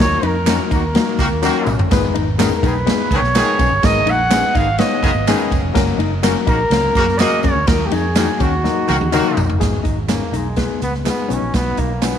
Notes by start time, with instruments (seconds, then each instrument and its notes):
Already playing: reed electric piano F#3 A#3
0.00 fingered electric bass D#2, reed electric piano D#4 F#4 A#4, trumpet C#5, snare, ride
0.23 fingered electric bass F2, hollow-body jazz guitar D#4, trumpet A#4, ride
0.46 horn section D#3 A#3 F#4, reed electric piano F#3 A#3 D#4 F#4 A#4, hollow-body jazz guitar C#4, snare, clap, ride, tambourine
0.71 fingered electric bass D#2, horn section D#3 A#3 F#4, hollow-body jazz guitar D#4, trumpet A#4, kick, ride, tambourine
0.94 reed electric piano F#3 A#3 D#4 F#4 A#4, hollow-body jazz guitar A#3, snare, ride
1.19 fingered electric bass C#2, horn section D#3 A#3 F#4, kick, ride, tambourine
1.31 fingered electric bass D#2
1.42 horn section D#3 A#3 F#4, reed electric piano F#3 A#3 D#4 F#4 A#4, hollow-body jazz guitar C#4, snare, clap, tambourine
1.66 fingered electric bass B1, mid tom, tambourine
1.78 fingered electric bass G1, floor tom
1.91 fingered electric bass G#1, reed electric piano G#3 B3 D#4 G#4 B4, kick, snare, ride, tambourine
2.14 fingered electric bass G#1, hollow-body jazz guitar D#4, ride
2.38 horn section D#3 B3 G#4, reed electric piano G#3 B3 D#4 G#4 A#4, hollow-body jazz guitar C#4, snare, clap, ride, tambourine
2.57 trumpet A#4
2.62 fingered electric bass B1, horn section D#3 B3 G#4, hollow-body jazz guitar D#4, kick, ride, tambourine
2.67 trumpet B4
2.87 reed electric piano G#3 B3 D#4 G#4 B4, hollow-body jazz guitar B3, snare, ride, tambourine
3.11 fingered electric bass C#2, horn section D#3 B3 G#4, kick, ride, tambourine
3.16 trumpet C#5
3.22 fingered electric bass B1, snare
3.35 horn section D#3 B3 G#4, reed electric piano G#3 B3 D#4 G#4 A#4, snare, clap, ride, tambourine
3.59 fingered electric bass B1, hollow-body jazz guitar C#4, kick, ride, tambourine
3.71 fingered electric bass G1
3.83 fingered electric bass G#1, reed electric piano G#3 B3 D#4 G#4 A#4, trumpet D#5, kick, snare, ride, tambourine
4.06 fingered electric bass A#1, hollow-body jazz guitar D#4, ride, tambourine
4.10 trumpet F#5
4.30 horn section D#3 B3 G#4, reed electric piano G#3 B3 D#4 G#4 B4, hollow-body jazz guitar C#4, snare, clap, ride, tambourine
4.55 fingered electric bass G#1, horn section D#3 B3 G#4, hollow-body jazz guitar D#4, trumpet F5, kick, ride, tambourine
4.78 reed electric piano G#3 B3 D#4 G#4 C#5, hollow-body jazz guitar B3, trumpet D#5, snare, ride
5.02 fingered electric bass F#1, horn section D#3 B3 G#4, kick, ride, tambourine
5.15 fingered electric bass G#1
5.26 horn section D#3 B3 G#4, reed electric piano G#3 B3 D#4 G#4 B4, hollow-body jazz guitar C#4, snare, clap, ride, tambourine
5.51 fingered electric bass F1, kick, ride, tambourine
5.62 fingered electric bass F1
5.74 fingered electric bass F#1, reed electric piano F#3 A#3 C#4 F#4 A#4, kick, snare, ride, tambourine
5.98 fingered electric bass F#1, hollow-body jazz guitar D#4, ride
6.23 horn section C#3 A#3 F#4, reed electric piano F#3 A#3 C#4 F#4 A#4, hollow-body jazz guitar C#4, snare, clap, ride, tambourine
6.47 fingered electric bass A#1, horn section C#3 A#3 F#4, hollow-body jazz guitar D#4, trumpet A#4, kick, ride, tambourine
6.70 fingered electric bass C#2, reed electric piano F#3 A#3 C#4 F#4 A#4, hollow-body jazz guitar A#3, snare, ride, tambourine
6.95 fingered electric bass F#2, horn section C#3 A#3 F#4, kick, ride, tambourine
7.09 snare
7.19 horn section C#3 A#3 F#4, reed electric piano F#3 A#3 C#4 F#4 A#4, trumpet D#5, snare, clap, ride, tambourine
7.43 fingered electric bass F#2, hollow-body jazz guitar C#4, trumpet C#5, kick, ride, tambourine
7.55 fingered electric bass D2
7.67 fingered electric bass D#2, reed electric piano F#3 A#3 D#4 F#4 A#4, trumpet A#4, kick, snare, ride, tambourine
7.86 trumpet G4
7.91 fingered electric bass F2, hollow-body jazz guitar D#4, trumpet G#4, ride, tambourine
8.15 horn section D#3 A#3 F#4, reed electric piano F#3 A#3 D#4 F#4 G#4, hollow-body jazz guitar D#4, snare, clap, ride, tambourine
8.39 fingered electric bass D#2, horn section D#3 A#3 F#4, hollow-body jazz guitar C#4, trumpet F#4, kick, ride, tambourine
8.64 reed electric piano F#3 A#3 D#4 F#4 A#4, hollow-body jazz guitar D#4, snare, tambourine
8.88 fingered electric bass C#2, horn section D#3 A#3 F#4, high tom, tambourine
9.01 fingered electric bass D#2, high tom
9.12 horn section D#3 A#3 F#4, reed electric piano F#3 A#3 D#4 F#4 A#4, hollow-body jazz guitar D#4, clap, mid tom, tambourine
9.37 fingered electric bass B1, floor tom, tambourine
9.49 fingered electric bass G1, floor tom
9.59 fingered electric bass G#1, reed electric piano G#3 B3 D#4 G#4, kick, snare, closed hi-hat, tambourine
9.84 fingered electric bass G#1, hollow-body jazz guitar D#4, kick, closed hi-hat, tambourine
10.08 reed electric piano G#3 B3 D#4 G#4, trumpet A#3, hollow-body jazz guitar C#4, snare, clap, closed hi-hat, tambourine
10.32 fingered electric bass B1, hollow-body jazz guitar D#4, closed hi-hat, tambourine
10.36 trumpet G#3
10.56 reed electric piano G#3 B3 D#4 G#4, hollow-body jazz guitar B3, kick, snare, closed hi-hat
10.82 fingered electric bass C#2, trumpet B3, closed hi-hat, tambourine
10.94 snare
11.05 reed electric piano G#3 B3 D#4 G#4, snare, clap, closed hi-hat, tambourine
11.09 trumpet B3
11.29 fingered electric bass B1, reed electric piano F#3 B3 D#4 F#4, hollow-body jazz guitar C#4, closed hi-hat, tambourine
11.34 trumpet C#4
11.42 fingered electric bass A#1
11.54 fingered electric bass B1, trumpet B3, kick, snare, closed hi-hat, tambourine
11.77 fingered electric bass B1, trumpet A#3, hollow-body jazz guitar D#4, kick, closed hi-hat
12.02 reed electric piano F#3 B3 D#4 F#4, trumpet B3, hollow-body jazz guitar C#4, snare, clap, closed hi-hat, tambourine